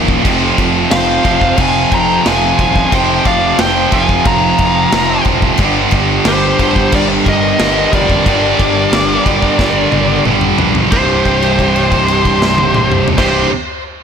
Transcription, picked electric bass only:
0, 0, Header, 1, 2, 480
1, 0, Start_track
1, 0, Tempo, 666667
1, 179, Time_signature, 4, 2, 24, 8
1, 10103, End_track
2, 0, Start_track
2, 0, Title_t, "Picked electric bass"
2, 0, Program_c, 0, 34
2, 0, Note_on_c, 0, 27, 91
2, 128, Note_off_c, 0, 27, 0
2, 180, Note_on_c, 0, 29, 89
2, 366, Note_off_c, 0, 29, 0
2, 421, Note_on_c, 0, 29, 88
2, 608, Note_off_c, 0, 29, 0
2, 659, Note_on_c, 0, 29, 93
2, 846, Note_off_c, 0, 29, 0
2, 900, Note_on_c, 0, 29, 92
2, 1087, Note_off_c, 0, 29, 0
2, 1137, Note_on_c, 0, 29, 94
2, 1325, Note_off_c, 0, 29, 0
2, 1381, Note_on_c, 0, 29, 91
2, 1569, Note_off_c, 0, 29, 0
2, 1630, Note_on_c, 0, 29, 99
2, 1814, Note_off_c, 0, 29, 0
2, 1863, Note_on_c, 0, 27, 88
2, 2050, Note_off_c, 0, 27, 0
2, 2107, Note_on_c, 0, 29, 97
2, 2293, Note_off_c, 0, 29, 0
2, 2345, Note_on_c, 0, 29, 89
2, 2532, Note_off_c, 0, 29, 0
2, 2588, Note_on_c, 0, 29, 93
2, 2774, Note_off_c, 0, 29, 0
2, 2826, Note_on_c, 0, 29, 90
2, 3012, Note_off_c, 0, 29, 0
2, 3066, Note_on_c, 0, 29, 99
2, 3253, Note_off_c, 0, 29, 0
2, 3304, Note_on_c, 0, 29, 96
2, 3491, Note_off_c, 0, 29, 0
2, 3544, Note_on_c, 0, 29, 103
2, 3731, Note_off_c, 0, 29, 0
2, 3785, Note_on_c, 0, 27, 90
2, 3972, Note_off_c, 0, 27, 0
2, 4024, Note_on_c, 0, 31, 94
2, 4211, Note_off_c, 0, 31, 0
2, 4264, Note_on_c, 0, 31, 87
2, 4452, Note_off_c, 0, 31, 0
2, 4505, Note_on_c, 0, 31, 102
2, 4692, Note_off_c, 0, 31, 0
2, 4748, Note_on_c, 0, 31, 87
2, 4934, Note_off_c, 0, 31, 0
2, 4990, Note_on_c, 0, 31, 96
2, 5175, Note_off_c, 0, 31, 0
2, 5230, Note_on_c, 0, 31, 87
2, 5415, Note_off_c, 0, 31, 0
2, 5467, Note_on_c, 0, 31, 100
2, 5654, Note_off_c, 0, 31, 0
2, 5710, Note_on_c, 0, 29, 90
2, 5895, Note_off_c, 0, 29, 0
2, 5948, Note_on_c, 0, 31, 90
2, 6134, Note_off_c, 0, 31, 0
2, 6188, Note_on_c, 0, 31, 91
2, 6374, Note_off_c, 0, 31, 0
2, 6420, Note_on_c, 0, 31, 98
2, 6609, Note_off_c, 0, 31, 0
2, 6670, Note_on_c, 0, 31, 93
2, 6855, Note_off_c, 0, 31, 0
2, 6905, Note_on_c, 0, 31, 92
2, 7092, Note_off_c, 0, 31, 0
2, 7143, Note_on_c, 0, 31, 84
2, 7330, Note_off_c, 0, 31, 0
2, 7383, Note_on_c, 0, 31, 96
2, 7570, Note_off_c, 0, 31, 0
2, 7623, Note_on_c, 0, 34, 84
2, 7810, Note_off_c, 0, 34, 0
2, 7864, Note_on_c, 0, 24, 91
2, 9406, Note_off_c, 0, 24, 0
2, 9490, Note_on_c, 0, 24, 107
2, 9692, Note_off_c, 0, 24, 0
2, 10103, End_track
0, 0, End_of_file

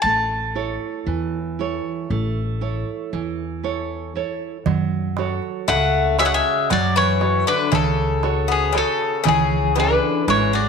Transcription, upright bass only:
0, 0, Header, 1, 2, 480
1, 0, Start_track
1, 0, Tempo, 1023891
1, 18, Time_signature, 9, 3, 24, 8
1, 5010, End_track
2, 0, Start_track
2, 0, Title_t, "Upright bass"
2, 0, Program_c, 0, 32
2, 17, Note_on_c, 0, 33, 81
2, 355, Note_off_c, 0, 33, 0
2, 499, Note_on_c, 0, 40, 84
2, 838, Note_off_c, 0, 40, 0
2, 986, Note_on_c, 0, 33, 95
2, 1322, Note_off_c, 0, 33, 0
2, 1467, Note_on_c, 0, 40, 77
2, 1972, Note_off_c, 0, 40, 0
2, 2186, Note_on_c, 0, 42, 94
2, 2522, Note_off_c, 0, 42, 0
2, 2664, Note_on_c, 0, 37, 84
2, 3000, Note_off_c, 0, 37, 0
2, 3144, Note_on_c, 0, 42, 101
2, 3480, Note_off_c, 0, 42, 0
2, 3621, Note_on_c, 0, 37, 80
2, 4124, Note_off_c, 0, 37, 0
2, 4338, Note_on_c, 0, 37, 97
2, 4672, Note_off_c, 0, 37, 0
2, 4817, Note_on_c, 0, 32, 85
2, 5010, Note_off_c, 0, 32, 0
2, 5010, End_track
0, 0, End_of_file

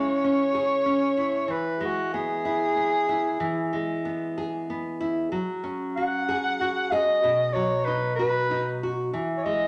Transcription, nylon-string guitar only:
0, 0, Header, 1, 2, 480
1, 0, Start_track
1, 0, Tempo, 635593
1, 1131, Time_signature, 6, 3, 24, 8
1, 7308, End_track
2, 0, Start_track
2, 0, Title_t, "Nylon-string guitar"
2, 0, Program_c, 0, 24
2, 0, Note_on_c, 0, 49, 67
2, 0, Note_on_c, 0, 56, 57
2, 0, Note_on_c, 0, 64, 59
2, 0, Note_on_c, 0, 68, 62
2, 183, Note_on_c, 0, 61, 51
2, 410, Note_off_c, 0, 68, 0
2, 413, Note_on_c, 0, 68, 60
2, 639, Note_off_c, 0, 61, 0
2, 648, Note_on_c, 0, 61, 52
2, 883, Note_off_c, 0, 64, 0
2, 886, Note_on_c, 0, 64, 54
2, 1101, Note_off_c, 0, 61, 0
2, 1115, Note_off_c, 0, 49, 0
2, 1118, Note_on_c, 0, 52, 68
2, 1360, Note_off_c, 0, 56, 0
2, 1363, Note_on_c, 0, 56, 59
2, 1615, Note_on_c, 0, 59, 52
2, 1848, Note_off_c, 0, 64, 0
2, 1851, Note_on_c, 0, 64, 54
2, 2083, Note_off_c, 0, 59, 0
2, 2092, Note_on_c, 0, 59, 52
2, 2323, Note_off_c, 0, 64, 0
2, 2332, Note_on_c, 0, 64, 54
2, 2536, Note_off_c, 0, 52, 0
2, 2543, Note_off_c, 0, 64, 0
2, 2568, Note_on_c, 0, 52, 68
2, 2812, Note_off_c, 0, 56, 0
2, 2815, Note_on_c, 0, 56, 60
2, 3050, Note_off_c, 0, 59, 0
2, 3056, Note_off_c, 0, 68, 0
2, 3060, Note_on_c, 0, 59, 54
2, 3305, Note_on_c, 0, 68, 66
2, 3536, Note_off_c, 0, 59, 0
2, 3548, Note_on_c, 0, 59, 57
2, 3780, Note_on_c, 0, 64, 56
2, 3982, Note_off_c, 0, 52, 0
2, 3985, Note_off_c, 0, 56, 0
2, 3987, Note_off_c, 0, 64, 0
2, 4016, Note_on_c, 0, 54, 70
2, 4020, Note_off_c, 0, 59, 0
2, 4256, Note_on_c, 0, 61, 62
2, 4511, Note_on_c, 0, 66, 58
2, 4739, Note_off_c, 0, 68, 0
2, 4747, Note_on_c, 0, 68, 68
2, 4982, Note_off_c, 0, 66, 0
2, 4991, Note_on_c, 0, 66, 57
2, 5216, Note_off_c, 0, 68, 0
2, 5226, Note_on_c, 0, 68, 65
2, 5426, Note_off_c, 0, 61, 0
2, 5433, Note_off_c, 0, 66, 0
2, 5459, Note_off_c, 0, 68, 0
2, 5465, Note_on_c, 0, 47, 73
2, 5695, Note_off_c, 0, 54, 0
2, 5703, Note_on_c, 0, 54, 62
2, 5946, Note_on_c, 0, 63, 58
2, 6187, Note_on_c, 0, 66, 60
2, 6417, Note_off_c, 0, 63, 0
2, 6426, Note_on_c, 0, 63, 56
2, 6660, Note_off_c, 0, 66, 0
2, 6670, Note_on_c, 0, 66, 59
2, 6871, Note_off_c, 0, 47, 0
2, 6871, Note_off_c, 0, 63, 0
2, 6873, Note_off_c, 0, 66, 0
2, 6899, Note_off_c, 0, 54, 0
2, 6899, Note_on_c, 0, 52, 69
2, 7141, Note_on_c, 0, 56, 57
2, 7308, Note_off_c, 0, 52, 0
2, 7308, Note_off_c, 0, 56, 0
2, 7308, End_track
0, 0, End_of_file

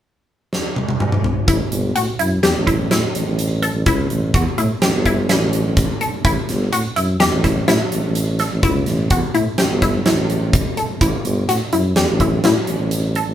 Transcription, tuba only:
0, 0, Header, 1, 2, 480
1, 0, Start_track
1, 0, Tempo, 476569
1, 1490, Time_signature, 5, 2, 24, 8
1, 13438, End_track
2, 0, Start_track
2, 0, Title_t, "Tuba"
2, 0, Program_c, 0, 58
2, 1490, Note_on_c, 0, 33, 71
2, 1594, Note_off_c, 0, 33, 0
2, 1730, Note_on_c, 0, 31, 76
2, 1937, Note_off_c, 0, 31, 0
2, 1970, Note_on_c, 0, 45, 67
2, 2074, Note_off_c, 0, 45, 0
2, 2210, Note_on_c, 0, 42, 69
2, 2418, Note_off_c, 0, 42, 0
2, 2451, Note_on_c, 0, 40, 71
2, 2554, Note_off_c, 0, 40, 0
2, 2573, Note_on_c, 0, 33, 72
2, 2883, Note_off_c, 0, 33, 0
2, 2934, Note_on_c, 0, 45, 76
2, 3036, Note_off_c, 0, 45, 0
2, 3175, Note_on_c, 0, 33, 67
2, 3277, Note_off_c, 0, 33, 0
2, 3296, Note_on_c, 0, 33, 69
2, 3709, Note_off_c, 0, 33, 0
2, 3771, Note_on_c, 0, 33, 73
2, 3875, Note_off_c, 0, 33, 0
2, 3892, Note_on_c, 0, 37, 82
2, 4099, Note_off_c, 0, 37, 0
2, 4135, Note_on_c, 0, 33, 74
2, 4340, Note_off_c, 0, 33, 0
2, 4373, Note_on_c, 0, 40, 66
2, 4476, Note_off_c, 0, 40, 0
2, 4612, Note_on_c, 0, 45, 82
2, 4715, Note_off_c, 0, 45, 0
2, 4854, Note_on_c, 0, 33, 73
2, 4956, Note_off_c, 0, 33, 0
2, 4973, Note_on_c, 0, 31, 76
2, 5283, Note_off_c, 0, 31, 0
2, 5334, Note_on_c, 0, 33, 76
2, 5928, Note_off_c, 0, 33, 0
2, 6294, Note_on_c, 0, 33, 73
2, 6396, Note_off_c, 0, 33, 0
2, 6533, Note_on_c, 0, 31, 81
2, 6740, Note_off_c, 0, 31, 0
2, 6774, Note_on_c, 0, 45, 71
2, 6876, Note_off_c, 0, 45, 0
2, 7016, Note_on_c, 0, 42, 69
2, 7222, Note_off_c, 0, 42, 0
2, 7254, Note_on_c, 0, 40, 73
2, 7356, Note_off_c, 0, 40, 0
2, 7373, Note_on_c, 0, 33, 77
2, 7684, Note_off_c, 0, 33, 0
2, 7734, Note_on_c, 0, 45, 78
2, 7836, Note_off_c, 0, 45, 0
2, 7975, Note_on_c, 0, 33, 71
2, 8077, Note_off_c, 0, 33, 0
2, 8096, Note_on_c, 0, 33, 75
2, 8509, Note_off_c, 0, 33, 0
2, 8577, Note_on_c, 0, 33, 72
2, 8678, Note_off_c, 0, 33, 0
2, 8693, Note_on_c, 0, 37, 83
2, 8899, Note_off_c, 0, 37, 0
2, 8936, Note_on_c, 0, 33, 72
2, 9141, Note_off_c, 0, 33, 0
2, 9172, Note_on_c, 0, 40, 73
2, 9275, Note_off_c, 0, 40, 0
2, 9410, Note_on_c, 0, 45, 80
2, 9514, Note_off_c, 0, 45, 0
2, 9646, Note_on_c, 0, 33, 66
2, 9751, Note_off_c, 0, 33, 0
2, 9765, Note_on_c, 0, 31, 80
2, 10078, Note_off_c, 0, 31, 0
2, 10122, Note_on_c, 0, 33, 80
2, 10720, Note_off_c, 0, 33, 0
2, 11091, Note_on_c, 0, 33, 77
2, 11194, Note_off_c, 0, 33, 0
2, 11328, Note_on_c, 0, 31, 80
2, 11535, Note_off_c, 0, 31, 0
2, 11566, Note_on_c, 0, 45, 69
2, 11671, Note_off_c, 0, 45, 0
2, 11808, Note_on_c, 0, 42, 73
2, 12016, Note_off_c, 0, 42, 0
2, 12047, Note_on_c, 0, 40, 70
2, 12151, Note_off_c, 0, 40, 0
2, 12168, Note_on_c, 0, 33, 76
2, 12479, Note_off_c, 0, 33, 0
2, 12527, Note_on_c, 0, 45, 80
2, 12631, Note_off_c, 0, 45, 0
2, 12767, Note_on_c, 0, 33, 63
2, 12871, Note_off_c, 0, 33, 0
2, 12888, Note_on_c, 0, 33, 73
2, 13302, Note_off_c, 0, 33, 0
2, 13369, Note_on_c, 0, 33, 73
2, 13438, Note_off_c, 0, 33, 0
2, 13438, End_track
0, 0, End_of_file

